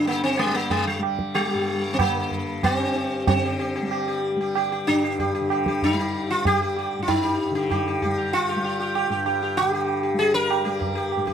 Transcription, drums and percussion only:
0, 0, Header, 1, 2, 480
1, 0, Start_track
1, 0, Tempo, 641711
1, 520, Time_signature, 4, 2, 24, 8
1, 4354, Tempo, 623053
1, 8603, End_track
2, 0, Start_track
2, 0, Title_t, "Tabla"
2, 42, Note_on_c, 9, 63, 66
2, 117, Note_off_c, 9, 63, 0
2, 280, Note_on_c, 9, 60, 60
2, 354, Note_off_c, 9, 60, 0
2, 525, Note_on_c, 9, 63, 84
2, 525, Note_on_c, 9, 64, 71
2, 600, Note_off_c, 9, 63, 0
2, 600, Note_off_c, 9, 64, 0
2, 769, Note_on_c, 9, 60, 58
2, 844, Note_off_c, 9, 60, 0
2, 889, Note_on_c, 9, 37, 47
2, 963, Note_off_c, 9, 37, 0
2, 1009, Note_on_c, 9, 60, 67
2, 1083, Note_off_c, 9, 60, 0
2, 1488, Note_on_c, 9, 60, 82
2, 1488, Note_on_c, 9, 64, 68
2, 1562, Note_off_c, 9, 60, 0
2, 1562, Note_off_c, 9, 64, 0
2, 1728, Note_on_c, 9, 64, 46
2, 1803, Note_off_c, 9, 64, 0
2, 1969, Note_on_c, 9, 60, 71
2, 1969, Note_on_c, 9, 64, 61
2, 2044, Note_off_c, 9, 60, 0
2, 2044, Note_off_c, 9, 64, 0
2, 2210, Note_on_c, 9, 62, 61
2, 2285, Note_off_c, 9, 62, 0
2, 2449, Note_on_c, 9, 63, 115
2, 2449, Note_on_c, 9, 64, 106
2, 2524, Note_off_c, 9, 63, 0
2, 2524, Note_off_c, 9, 64, 0
2, 2925, Note_on_c, 9, 60, 79
2, 3000, Note_off_c, 9, 60, 0
2, 3407, Note_on_c, 9, 60, 79
2, 3481, Note_off_c, 9, 60, 0
2, 3645, Note_on_c, 9, 60, 55
2, 3720, Note_off_c, 9, 60, 0
2, 3882, Note_on_c, 9, 63, 83
2, 3882, Note_on_c, 9, 64, 61
2, 3957, Note_off_c, 9, 63, 0
2, 3957, Note_off_c, 9, 64, 0
2, 4116, Note_on_c, 9, 60, 63
2, 4191, Note_off_c, 9, 60, 0
2, 4235, Note_on_c, 9, 37, 58
2, 4310, Note_off_c, 9, 37, 0
2, 4355, Note_on_c, 9, 63, 83
2, 4355, Note_on_c, 9, 64, 73
2, 4433, Note_off_c, 9, 63, 0
2, 4433, Note_off_c, 9, 64, 0
2, 4841, Note_on_c, 9, 63, 87
2, 4841, Note_on_c, 9, 64, 70
2, 4918, Note_off_c, 9, 63, 0
2, 4918, Note_off_c, 9, 64, 0
2, 5082, Note_on_c, 9, 60, 60
2, 5159, Note_off_c, 9, 60, 0
2, 5326, Note_on_c, 9, 63, 88
2, 5326, Note_on_c, 9, 64, 75
2, 5403, Note_off_c, 9, 63, 0
2, 5403, Note_off_c, 9, 64, 0
2, 5807, Note_on_c, 9, 60, 69
2, 5807, Note_on_c, 9, 64, 70
2, 5884, Note_off_c, 9, 60, 0
2, 5884, Note_off_c, 9, 64, 0
2, 6047, Note_on_c, 9, 64, 55
2, 6124, Note_off_c, 9, 64, 0
2, 6285, Note_on_c, 9, 63, 85
2, 6362, Note_off_c, 9, 63, 0
2, 6767, Note_on_c, 9, 60, 82
2, 6844, Note_off_c, 9, 60, 0
2, 7004, Note_on_c, 9, 60, 62
2, 7081, Note_off_c, 9, 60, 0
2, 7247, Note_on_c, 9, 60, 86
2, 7324, Note_off_c, 9, 60, 0
2, 7484, Note_on_c, 9, 60, 60
2, 7561, Note_off_c, 9, 60, 0
2, 7725, Note_on_c, 9, 63, 72
2, 7802, Note_off_c, 9, 63, 0
2, 7963, Note_on_c, 9, 60, 69
2, 8040, Note_off_c, 9, 60, 0
2, 8199, Note_on_c, 9, 63, 88
2, 8199, Note_on_c, 9, 64, 70
2, 8276, Note_off_c, 9, 63, 0
2, 8276, Note_off_c, 9, 64, 0
2, 8438, Note_on_c, 9, 60, 65
2, 8515, Note_off_c, 9, 60, 0
2, 8557, Note_on_c, 9, 37, 55
2, 8603, Note_off_c, 9, 37, 0
2, 8603, End_track
0, 0, End_of_file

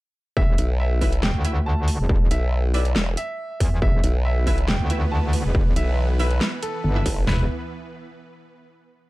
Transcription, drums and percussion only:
0, 0, Header, 1, 2, 480
1, 0, Start_track
1, 0, Key_signature, 1, "minor"
1, 0, Tempo, 431655
1, 408, Time_signature, 4, 2, 24, 8
1, 10117, End_track
2, 0, Start_track
2, 0, Title_t, "Drums"
2, 408, Note_on_c, 9, 36, 117
2, 519, Note_off_c, 9, 36, 0
2, 648, Note_on_c, 9, 42, 85
2, 759, Note_off_c, 9, 42, 0
2, 1128, Note_on_c, 9, 36, 63
2, 1128, Note_on_c, 9, 46, 66
2, 1239, Note_off_c, 9, 36, 0
2, 1239, Note_off_c, 9, 46, 0
2, 1252, Note_on_c, 9, 42, 40
2, 1363, Note_off_c, 9, 42, 0
2, 1368, Note_on_c, 9, 38, 120
2, 1479, Note_off_c, 9, 38, 0
2, 1608, Note_on_c, 9, 42, 88
2, 1719, Note_off_c, 9, 42, 0
2, 2087, Note_on_c, 9, 46, 102
2, 2199, Note_off_c, 9, 46, 0
2, 2328, Note_on_c, 9, 36, 122
2, 2439, Note_off_c, 9, 36, 0
2, 2568, Note_on_c, 9, 42, 90
2, 2679, Note_off_c, 9, 42, 0
2, 3048, Note_on_c, 9, 46, 64
2, 3159, Note_off_c, 9, 46, 0
2, 3172, Note_on_c, 9, 42, 39
2, 3283, Note_off_c, 9, 42, 0
2, 3288, Note_on_c, 9, 38, 121
2, 3399, Note_off_c, 9, 38, 0
2, 3528, Note_on_c, 9, 42, 85
2, 3639, Note_off_c, 9, 42, 0
2, 4008, Note_on_c, 9, 36, 69
2, 4008, Note_on_c, 9, 46, 100
2, 4119, Note_off_c, 9, 36, 0
2, 4119, Note_off_c, 9, 46, 0
2, 4248, Note_on_c, 9, 36, 127
2, 4359, Note_off_c, 9, 36, 0
2, 4488, Note_on_c, 9, 42, 86
2, 4599, Note_off_c, 9, 42, 0
2, 4968, Note_on_c, 9, 36, 63
2, 4968, Note_on_c, 9, 46, 60
2, 5079, Note_off_c, 9, 36, 0
2, 5079, Note_off_c, 9, 46, 0
2, 5092, Note_on_c, 9, 42, 40
2, 5203, Note_off_c, 9, 42, 0
2, 5208, Note_on_c, 9, 38, 122
2, 5319, Note_off_c, 9, 38, 0
2, 5448, Note_on_c, 9, 42, 84
2, 5559, Note_off_c, 9, 42, 0
2, 5928, Note_on_c, 9, 46, 94
2, 6039, Note_off_c, 9, 46, 0
2, 6168, Note_on_c, 9, 36, 127
2, 6279, Note_off_c, 9, 36, 0
2, 6408, Note_on_c, 9, 42, 84
2, 6519, Note_off_c, 9, 42, 0
2, 6888, Note_on_c, 9, 46, 59
2, 6999, Note_off_c, 9, 46, 0
2, 7012, Note_on_c, 9, 42, 37
2, 7123, Note_off_c, 9, 42, 0
2, 7128, Note_on_c, 9, 38, 121
2, 7239, Note_off_c, 9, 38, 0
2, 7368, Note_on_c, 9, 42, 82
2, 7479, Note_off_c, 9, 42, 0
2, 7848, Note_on_c, 9, 36, 69
2, 7848, Note_on_c, 9, 46, 95
2, 7959, Note_off_c, 9, 36, 0
2, 7959, Note_off_c, 9, 46, 0
2, 8088, Note_on_c, 9, 38, 110
2, 8088, Note_on_c, 9, 39, 89
2, 8088, Note_on_c, 9, 43, 105
2, 8199, Note_off_c, 9, 38, 0
2, 8199, Note_off_c, 9, 39, 0
2, 8199, Note_off_c, 9, 43, 0
2, 10117, End_track
0, 0, End_of_file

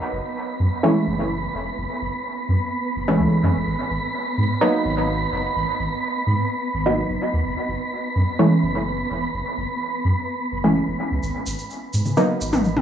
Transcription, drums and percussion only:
0, 0, Header, 1, 2, 480
1, 0, Start_track
1, 0, Tempo, 472441
1, 1805, Time_signature, 4, 2, 24, 8
1, 13021, End_track
2, 0, Start_track
2, 0, Title_t, "Drums"
2, 11411, Note_on_c, 9, 82, 37
2, 11513, Note_off_c, 9, 82, 0
2, 11647, Note_on_c, 9, 82, 91
2, 11749, Note_off_c, 9, 82, 0
2, 11773, Note_on_c, 9, 82, 53
2, 11875, Note_off_c, 9, 82, 0
2, 11891, Note_on_c, 9, 82, 40
2, 11992, Note_off_c, 9, 82, 0
2, 12124, Note_on_c, 9, 82, 93
2, 12226, Note_off_c, 9, 82, 0
2, 12247, Note_on_c, 9, 82, 51
2, 12250, Note_on_c, 9, 63, 52
2, 12349, Note_off_c, 9, 82, 0
2, 12351, Note_off_c, 9, 63, 0
2, 12362, Note_on_c, 9, 82, 40
2, 12464, Note_off_c, 9, 82, 0
2, 12610, Note_on_c, 9, 82, 99
2, 12712, Note_off_c, 9, 82, 0
2, 12728, Note_on_c, 9, 82, 54
2, 12730, Note_on_c, 9, 47, 96
2, 12829, Note_off_c, 9, 82, 0
2, 12832, Note_off_c, 9, 47, 0
2, 12845, Note_on_c, 9, 82, 37
2, 12946, Note_off_c, 9, 82, 0
2, 12971, Note_on_c, 9, 47, 96
2, 12971, Note_on_c, 9, 63, 56
2, 13021, Note_off_c, 9, 47, 0
2, 13021, Note_off_c, 9, 63, 0
2, 13021, End_track
0, 0, End_of_file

